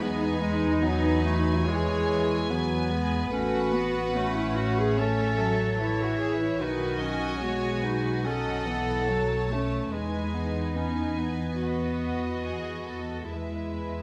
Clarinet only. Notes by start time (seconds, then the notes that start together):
0.02 B3
0.41 G#3
0.82 B3
1.25 A3
1.68 G#3
2.50 B3
3.32 C#4
3.73 B3
4.15 A3
4.98 C#4
5.80 E4
6.61 D#4
7.01 C#4
7.42 B3
7.84 D#4
8.25 C#4
8.67 B3
9.09 F#3
9.51 A3
9.92 G#3
10.34 B3
10.76 C#4
11.18 B3
13.32 G#3